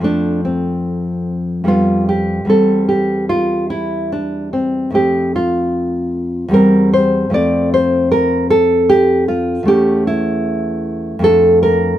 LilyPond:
\new Staff \with { instrumentName = "Nylon-string guitar" } { \time 3/4 \key f \major \tempo 4 = 75 << { d'8 c'4. f'8 g'8 | a'8 g'8 f'8 e'8 d'8 c'8 | g'8 f'4. bes'8 c''8 | d''8 c''8 bes'8 a'8 g'8 f'8 |
\key a \phrygian g'8 e'4. a'8 bes'8 | } \\ { <f, f a>2 <f, g b>4 | <e, g c'>2. | <f, a c'>2 <e, g c'>4 | <f, a c'>2. |
<e, a cis'>2 <f, a d'>4 | } >> }